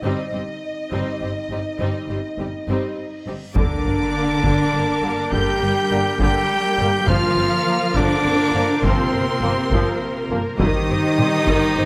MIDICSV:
0, 0, Header, 1, 14, 480
1, 0, Start_track
1, 0, Key_signature, -2, "minor"
1, 0, Tempo, 586510
1, 30, Time_signature, 12, 3, 24, 8
1, 9700, End_track
2, 0, Start_track
2, 0, Title_t, "Violin section"
2, 0, Program_c, 0, 48
2, 21, Note_on_c, 0, 75, 49
2, 2638, Note_off_c, 0, 75, 0
2, 2908, Note_on_c, 0, 86, 71
2, 4321, Note_off_c, 0, 86, 0
2, 4360, Note_on_c, 0, 91, 74
2, 5073, Note_off_c, 0, 91, 0
2, 5083, Note_on_c, 0, 91, 76
2, 5786, Note_off_c, 0, 91, 0
2, 5788, Note_on_c, 0, 89, 87
2, 6504, Note_on_c, 0, 86, 88
2, 6513, Note_off_c, 0, 89, 0
2, 7229, Note_on_c, 0, 84, 74
2, 7230, Note_off_c, 0, 86, 0
2, 8431, Note_off_c, 0, 84, 0
2, 8670, Note_on_c, 0, 87, 83
2, 9700, Note_off_c, 0, 87, 0
2, 9700, End_track
3, 0, Start_track
3, 0, Title_t, "String section"
3, 0, Program_c, 1, 48
3, 2901, Note_on_c, 1, 70, 50
3, 2903, Note_off_c, 1, 70, 0
3, 2903, Note_on_c, 1, 62, 55
3, 2903, Note_on_c, 1, 70, 55
3, 2906, Note_on_c, 1, 58, 56
3, 5758, Note_off_c, 1, 62, 0
3, 5759, Note_off_c, 1, 70, 0
3, 5760, Note_off_c, 1, 58, 0
3, 5799, Note_on_c, 1, 58, 68
3, 5803, Note_on_c, 1, 70, 72
3, 5804, Note_on_c, 1, 65, 68
3, 5807, Note_on_c, 1, 72, 65
3, 8643, Note_off_c, 1, 58, 0
3, 8645, Note_off_c, 1, 70, 0
3, 8655, Note_off_c, 1, 72, 0
3, 8665, Note_on_c, 1, 72, 66
3, 8667, Note_off_c, 1, 72, 0
3, 8667, Note_on_c, 1, 55, 76
3, 8667, Note_on_c, 1, 72, 82
3, 8668, Note_on_c, 1, 67, 76
3, 8678, Note_off_c, 1, 65, 0
3, 9700, Note_off_c, 1, 55, 0
3, 9700, Note_off_c, 1, 67, 0
3, 9700, Note_off_c, 1, 72, 0
3, 9700, End_track
4, 0, Start_track
4, 0, Title_t, "Violin section"
4, 0, Program_c, 2, 48
4, 36, Note_on_c, 2, 60, 39
4, 36, Note_on_c, 2, 63, 37
4, 257, Note_off_c, 2, 60, 0
4, 257, Note_off_c, 2, 63, 0
4, 275, Note_on_c, 2, 67, 29
4, 275, Note_on_c, 2, 72, 25
4, 340, Note_off_c, 2, 67, 0
4, 341, Note_off_c, 2, 72, 0
4, 761, Note_on_c, 2, 63, 38
4, 763, Note_on_c, 2, 60, 37
4, 980, Note_off_c, 2, 63, 0
4, 982, Note_off_c, 2, 60, 0
4, 1003, Note_on_c, 2, 67, 25
4, 1008, Note_on_c, 2, 72, 30
4, 1069, Note_off_c, 2, 67, 0
4, 1073, Note_off_c, 2, 72, 0
4, 1237, Note_on_c, 2, 63, 27
4, 1240, Note_on_c, 2, 67, 24
4, 1303, Note_off_c, 2, 63, 0
4, 1306, Note_off_c, 2, 67, 0
4, 1479, Note_on_c, 2, 63, 35
4, 1483, Note_on_c, 2, 60, 36
4, 1700, Note_off_c, 2, 63, 0
4, 1702, Note_off_c, 2, 60, 0
4, 1721, Note_on_c, 2, 67, 25
4, 1721, Note_on_c, 2, 72, 23
4, 1786, Note_off_c, 2, 72, 0
4, 1787, Note_off_c, 2, 67, 0
4, 1966, Note_on_c, 2, 63, 26
4, 1966, Note_on_c, 2, 67, 25
4, 2031, Note_off_c, 2, 63, 0
4, 2031, Note_off_c, 2, 67, 0
4, 2205, Note_on_c, 2, 60, 38
4, 2205, Note_on_c, 2, 63, 34
4, 2424, Note_off_c, 2, 60, 0
4, 2424, Note_off_c, 2, 63, 0
4, 2682, Note_on_c, 2, 63, 26
4, 2683, Note_on_c, 2, 67, 24
4, 2748, Note_off_c, 2, 63, 0
4, 2749, Note_off_c, 2, 67, 0
4, 2913, Note_on_c, 2, 74, 59
4, 4323, Note_off_c, 2, 74, 0
4, 4366, Note_on_c, 2, 79, 69
4, 5070, Note_off_c, 2, 79, 0
4, 5080, Note_on_c, 2, 79, 79
4, 5784, Note_off_c, 2, 79, 0
4, 5800, Note_on_c, 2, 77, 73
4, 6504, Note_on_c, 2, 74, 85
4, 6519, Note_off_c, 2, 77, 0
4, 7216, Note_off_c, 2, 74, 0
4, 7230, Note_on_c, 2, 72, 66
4, 8432, Note_off_c, 2, 72, 0
4, 8661, Note_on_c, 2, 75, 80
4, 9700, Note_off_c, 2, 75, 0
4, 9700, End_track
5, 0, Start_track
5, 0, Title_t, "French horn section"
5, 0, Program_c, 3, 60
5, 30, Note_on_c, 3, 60, 40
5, 31, Note_on_c, 3, 63, 40
5, 2643, Note_off_c, 3, 60, 0
5, 2644, Note_off_c, 3, 63, 0
5, 2921, Note_on_c, 3, 62, 59
5, 4327, Note_off_c, 3, 62, 0
5, 4370, Note_on_c, 3, 67, 69
5, 5070, Note_off_c, 3, 67, 0
5, 5085, Note_on_c, 3, 67, 67
5, 5787, Note_off_c, 3, 67, 0
5, 5793, Note_on_c, 3, 65, 74
5, 6515, Note_off_c, 3, 65, 0
5, 6521, Note_on_c, 3, 62, 77
5, 7232, Note_on_c, 3, 60, 62
5, 7239, Note_off_c, 3, 62, 0
5, 8433, Note_off_c, 3, 60, 0
5, 8663, Note_on_c, 3, 63, 80
5, 9700, Note_off_c, 3, 63, 0
5, 9700, End_track
6, 0, Start_track
6, 0, Title_t, "Trumpet"
6, 0, Program_c, 4, 56
6, 2913, Note_on_c, 4, 62, 69
6, 4357, Note_on_c, 4, 67, 68
6, 4369, Note_off_c, 4, 62, 0
6, 5070, Note_off_c, 4, 67, 0
6, 5075, Note_on_c, 4, 67, 80
6, 5782, Note_off_c, 4, 67, 0
6, 5795, Note_on_c, 4, 65, 82
6, 6513, Note_on_c, 4, 62, 89
6, 6525, Note_off_c, 4, 65, 0
6, 7233, Note_on_c, 4, 60, 66
6, 7245, Note_off_c, 4, 62, 0
6, 8433, Note_off_c, 4, 60, 0
6, 8668, Note_on_c, 4, 63, 87
6, 9700, Note_off_c, 4, 63, 0
6, 9700, End_track
7, 0, Start_track
7, 0, Title_t, "Viola section"
7, 0, Program_c, 5, 48
7, 28, Note_on_c, 5, 60, 40
7, 30, Note_on_c, 5, 55, 39
7, 253, Note_off_c, 5, 60, 0
7, 254, Note_off_c, 5, 55, 0
7, 270, Note_on_c, 5, 60, 28
7, 271, Note_on_c, 5, 55, 25
7, 336, Note_off_c, 5, 55, 0
7, 336, Note_off_c, 5, 60, 0
7, 747, Note_on_c, 5, 55, 38
7, 750, Note_on_c, 5, 60, 38
7, 973, Note_off_c, 5, 55, 0
7, 975, Note_off_c, 5, 60, 0
7, 990, Note_on_c, 5, 55, 25
7, 990, Note_on_c, 5, 60, 25
7, 1055, Note_off_c, 5, 55, 0
7, 1055, Note_off_c, 5, 60, 0
7, 1235, Note_on_c, 5, 55, 27
7, 1237, Note_on_c, 5, 60, 25
7, 1300, Note_off_c, 5, 55, 0
7, 1303, Note_off_c, 5, 60, 0
7, 1466, Note_on_c, 5, 55, 33
7, 1466, Note_on_c, 5, 60, 32
7, 1693, Note_off_c, 5, 55, 0
7, 1693, Note_off_c, 5, 60, 0
7, 1713, Note_on_c, 5, 55, 28
7, 1713, Note_on_c, 5, 60, 26
7, 1778, Note_off_c, 5, 55, 0
7, 1779, Note_off_c, 5, 60, 0
7, 1948, Note_on_c, 5, 60, 27
7, 1950, Note_on_c, 5, 55, 28
7, 2013, Note_off_c, 5, 60, 0
7, 2016, Note_off_c, 5, 55, 0
7, 2194, Note_on_c, 5, 55, 29
7, 2194, Note_on_c, 5, 60, 36
7, 2418, Note_off_c, 5, 55, 0
7, 2418, Note_off_c, 5, 60, 0
7, 2676, Note_on_c, 5, 55, 25
7, 2678, Note_on_c, 5, 60, 24
7, 2742, Note_off_c, 5, 55, 0
7, 2743, Note_off_c, 5, 60, 0
7, 2909, Note_on_c, 5, 50, 50
7, 2909, Note_on_c, 5, 70, 44
7, 3136, Note_off_c, 5, 50, 0
7, 3151, Note_on_c, 5, 58, 39
7, 3217, Note_off_c, 5, 58, 0
7, 3631, Note_on_c, 5, 50, 55
7, 3857, Note_off_c, 5, 50, 0
7, 3877, Note_on_c, 5, 58, 38
7, 3942, Note_off_c, 5, 58, 0
7, 4112, Note_on_c, 5, 55, 44
7, 4178, Note_off_c, 5, 55, 0
7, 4359, Note_on_c, 5, 50, 53
7, 4582, Note_off_c, 5, 50, 0
7, 4593, Note_on_c, 5, 58, 44
7, 4658, Note_off_c, 5, 58, 0
7, 4837, Note_on_c, 5, 55, 50
7, 4902, Note_off_c, 5, 55, 0
7, 5075, Note_on_c, 5, 50, 60
7, 5299, Note_off_c, 5, 50, 0
7, 5560, Note_on_c, 5, 55, 51
7, 5625, Note_off_c, 5, 55, 0
7, 5761, Note_off_c, 5, 70, 0
7, 5797, Note_on_c, 5, 53, 65
7, 5797, Note_on_c, 5, 70, 57
7, 6020, Note_off_c, 5, 53, 0
7, 6045, Note_on_c, 5, 60, 47
7, 6111, Note_off_c, 5, 60, 0
7, 6518, Note_on_c, 5, 53, 70
7, 6741, Note_off_c, 5, 53, 0
7, 6762, Note_on_c, 5, 60, 49
7, 6827, Note_off_c, 5, 60, 0
7, 6996, Note_on_c, 5, 58, 57
7, 7061, Note_off_c, 5, 58, 0
7, 7240, Note_on_c, 5, 53, 67
7, 7461, Note_off_c, 5, 53, 0
7, 7479, Note_on_c, 5, 60, 52
7, 7545, Note_off_c, 5, 60, 0
7, 7723, Note_on_c, 5, 58, 62
7, 7789, Note_off_c, 5, 58, 0
7, 7961, Note_on_c, 5, 53, 70
7, 8182, Note_off_c, 5, 53, 0
7, 8430, Note_on_c, 5, 58, 55
7, 8496, Note_off_c, 5, 58, 0
7, 8642, Note_off_c, 5, 70, 0
7, 8674, Note_on_c, 5, 51, 69
7, 8675, Note_on_c, 5, 67, 64
7, 8897, Note_off_c, 5, 51, 0
7, 8922, Note_on_c, 5, 60, 53
7, 8987, Note_off_c, 5, 60, 0
7, 9396, Note_on_c, 5, 51, 77
7, 9618, Note_off_c, 5, 51, 0
7, 9638, Note_on_c, 5, 60, 44
7, 9700, Note_off_c, 5, 60, 0
7, 9700, Note_off_c, 5, 67, 0
7, 9700, End_track
8, 0, Start_track
8, 0, Title_t, "Trombone section"
8, 0, Program_c, 6, 61
8, 3397, Note_on_c, 6, 58, 47
8, 3398, Note_on_c, 6, 50, 43
8, 3481, Note_off_c, 6, 50, 0
8, 3481, Note_off_c, 6, 58, 0
8, 4116, Note_on_c, 6, 50, 51
8, 4118, Note_on_c, 6, 58, 48
8, 4200, Note_off_c, 6, 50, 0
8, 4202, Note_off_c, 6, 58, 0
8, 4835, Note_on_c, 6, 50, 56
8, 4841, Note_on_c, 6, 58, 57
8, 4920, Note_off_c, 6, 50, 0
8, 4923, Note_off_c, 6, 58, 0
8, 5563, Note_on_c, 6, 50, 58
8, 5567, Note_on_c, 6, 58, 56
8, 5645, Note_off_c, 6, 50, 0
8, 5648, Note_off_c, 6, 58, 0
8, 6271, Note_on_c, 6, 58, 59
8, 6272, Note_on_c, 6, 53, 55
8, 6357, Note_off_c, 6, 58, 0
8, 6358, Note_off_c, 6, 53, 0
8, 6982, Note_on_c, 6, 53, 61
8, 6985, Note_on_c, 6, 58, 62
8, 7071, Note_off_c, 6, 53, 0
8, 7073, Note_off_c, 6, 58, 0
8, 7710, Note_on_c, 6, 58, 71
8, 7713, Note_on_c, 6, 53, 69
8, 7796, Note_off_c, 6, 58, 0
8, 7798, Note_off_c, 6, 53, 0
8, 8429, Note_on_c, 6, 53, 62
8, 8431, Note_on_c, 6, 58, 62
8, 8515, Note_off_c, 6, 53, 0
8, 8516, Note_off_c, 6, 58, 0
8, 9143, Note_on_c, 6, 55, 63
8, 9151, Note_on_c, 6, 60, 63
8, 9231, Note_off_c, 6, 55, 0
8, 9236, Note_off_c, 6, 60, 0
8, 9700, End_track
9, 0, Start_track
9, 0, Title_t, "Cello section"
9, 0, Program_c, 7, 48
9, 30, Note_on_c, 7, 43, 44
9, 96, Note_off_c, 7, 43, 0
9, 267, Note_on_c, 7, 43, 28
9, 332, Note_off_c, 7, 43, 0
9, 747, Note_on_c, 7, 43, 39
9, 813, Note_off_c, 7, 43, 0
9, 986, Note_on_c, 7, 43, 26
9, 1052, Note_off_c, 7, 43, 0
9, 1227, Note_on_c, 7, 43, 28
9, 1293, Note_off_c, 7, 43, 0
9, 1464, Note_on_c, 7, 43, 34
9, 1530, Note_off_c, 7, 43, 0
9, 1709, Note_on_c, 7, 43, 26
9, 1774, Note_off_c, 7, 43, 0
9, 1950, Note_on_c, 7, 43, 25
9, 2015, Note_off_c, 7, 43, 0
9, 2189, Note_on_c, 7, 43, 35
9, 2254, Note_off_c, 7, 43, 0
9, 2669, Note_on_c, 7, 43, 26
9, 2734, Note_off_c, 7, 43, 0
9, 2905, Note_on_c, 7, 50, 60
9, 4319, Note_off_c, 7, 50, 0
9, 4351, Note_on_c, 7, 55, 63
9, 5058, Note_off_c, 7, 55, 0
9, 5068, Note_on_c, 7, 55, 68
9, 5778, Note_off_c, 7, 55, 0
9, 5789, Note_on_c, 7, 53, 77
9, 6510, Note_on_c, 7, 50, 75
9, 6513, Note_off_c, 7, 53, 0
9, 7218, Note_off_c, 7, 50, 0
9, 7228, Note_on_c, 7, 48, 61
9, 8407, Note_off_c, 7, 48, 0
9, 8666, Note_on_c, 7, 51, 80
9, 9700, Note_off_c, 7, 51, 0
9, 9700, End_track
10, 0, Start_track
10, 0, Title_t, "Timpani"
10, 0, Program_c, 8, 47
10, 5791, Note_on_c, 8, 43, 66
10, 6481, Note_off_c, 8, 43, 0
10, 9700, End_track
11, 0, Start_track
11, 0, Title_t, "Double bass section"
11, 0, Program_c, 10, 48
11, 27, Note_on_c, 10, 31, 42
11, 92, Note_off_c, 10, 31, 0
11, 267, Note_on_c, 10, 31, 28
11, 333, Note_off_c, 10, 31, 0
11, 748, Note_on_c, 10, 31, 39
11, 813, Note_off_c, 10, 31, 0
11, 994, Note_on_c, 10, 31, 26
11, 1059, Note_off_c, 10, 31, 0
11, 1233, Note_on_c, 10, 31, 26
11, 1299, Note_off_c, 10, 31, 0
11, 1473, Note_on_c, 10, 31, 35
11, 1539, Note_off_c, 10, 31, 0
11, 1715, Note_on_c, 10, 31, 25
11, 1780, Note_off_c, 10, 31, 0
11, 1956, Note_on_c, 10, 31, 27
11, 2021, Note_off_c, 10, 31, 0
11, 2196, Note_on_c, 10, 31, 33
11, 2262, Note_off_c, 10, 31, 0
11, 2676, Note_on_c, 10, 31, 24
11, 2741, Note_off_c, 10, 31, 0
11, 2911, Note_on_c, 10, 31, 56
11, 2976, Note_off_c, 10, 31, 0
11, 3152, Note_on_c, 10, 31, 36
11, 3217, Note_off_c, 10, 31, 0
11, 3635, Note_on_c, 10, 31, 59
11, 3700, Note_off_c, 10, 31, 0
11, 3870, Note_on_c, 10, 31, 41
11, 3936, Note_off_c, 10, 31, 0
11, 4114, Note_on_c, 10, 31, 42
11, 4180, Note_off_c, 10, 31, 0
11, 4352, Note_on_c, 10, 31, 59
11, 4418, Note_off_c, 10, 31, 0
11, 4589, Note_on_c, 10, 31, 45
11, 4654, Note_off_c, 10, 31, 0
11, 4834, Note_on_c, 10, 31, 47
11, 4900, Note_off_c, 10, 31, 0
11, 5072, Note_on_c, 10, 31, 60
11, 5137, Note_off_c, 10, 31, 0
11, 5553, Note_on_c, 10, 31, 50
11, 5619, Note_off_c, 10, 31, 0
11, 5792, Note_on_c, 10, 31, 66
11, 5857, Note_off_c, 10, 31, 0
11, 6031, Note_on_c, 10, 31, 47
11, 6096, Note_off_c, 10, 31, 0
11, 6510, Note_on_c, 10, 31, 73
11, 6576, Note_off_c, 10, 31, 0
11, 6745, Note_on_c, 10, 31, 50
11, 6810, Note_off_c, 10, 31, 0
11, 6985, Note_on_c, 10, 31, 56
11, 7050, Note_off_c, 10, 31, 0
11, 7228, Note_on_c, 10, 31, 74
11, 7294, Note_off_c, 10, 31, 0
11, 7468, Note_on_c, 10, 31, 55
11, 7533, Note_off_c, 10, 31, 0
11, 7707, Note_on_c, 10, 31, 56
11, 7773, Note_off_c, 10, 31, 0
11, 7949, Note_on_c, 10, 31, 75
11, 8015, Note_off_c, 10, 31, 0
11, 8431, Note_on_c, 10, 31, 52
11, 8497, Note_off_c, 10, 31, 0
11, 8668, Note_on_c, 10, 31, 77
11, 8733, Note_off_c, 10, 31, 0
11, 8907, Note_on_c, 10, 31, 51
11, 8973, Note_off_c, 10, 31, 0
11, 9388, Note_on_c, 10, 31, 73
11, 9453, Note_off_c, 10, 31, 0
11, 9633, Note_on_c, 10, 31, 54
11, 9698, Note_off_c, 10, 31, 0
11, 9700, End_track
12, 0, Start_track
12, 0, Title_t, "Reverse cymbal"
12, 0, Program_c, 11, 119
12, 32, Note_on_c, 11, 60, 39
12, 2917, Note_off_c, 11, 60, 0
12, 9700, End_track
13, 0, Start_track
13, 0, Title_t, "Sub drop"
13, 0, Program_c, 12, 103
13, 2913, Note_on_c, 12, 60, 60
13, 5796, Note_off_c, 12, 60, 0
13, 9700, End_track
14, 0, Start_track
14, 0, Title_t, "Taiko and cinematic ensemble drums"
14, 2911, Note_on_c, 9, 41, 79
14, 2993, Note_off_c, 9, 41, 0
14, 3631, Note_on_c, 9, 41, 61
14, 3713, Note_off_c, 9, 41, 0
14, 4357, Note_on_c, 9, 41, 67
14, 4439, Note_off_c, 9, 41, 0
14, 5072, Note_on_c, 9, 41, 70
14, 5153, Note_off_c, 9, 41, 0
14, 5789, Note_on_c, 9, 41, 89
14, 5871, Note_off_c, 9, 41, 0
14, 6509, Note_on_c, 9, 41, 69
14, 6591, Note_off_c, 9, 41, 0
14, 7231, Note_on_c, 9, 41, 76
14, 7313, Note_off_c, 9, 41, 0
14, 7950, Note_on_c, 9, 41, 73
14, 8032, Note_off_c, 9, 41, 0
14, 8670, Note_on_c, 9, 41, 94
14, 8752, Note_off_c, 9, 41, 0
14, 9153, Note_on_c, 9, 47, 53
14, 9235, Note_off_c, 9, 47, 0
14, 9390, Note_on_c, 9, 41, 72
14, 9472, Note_off_c, 9, 41, 0
14, 9700, End_track
0, 0, End_of_file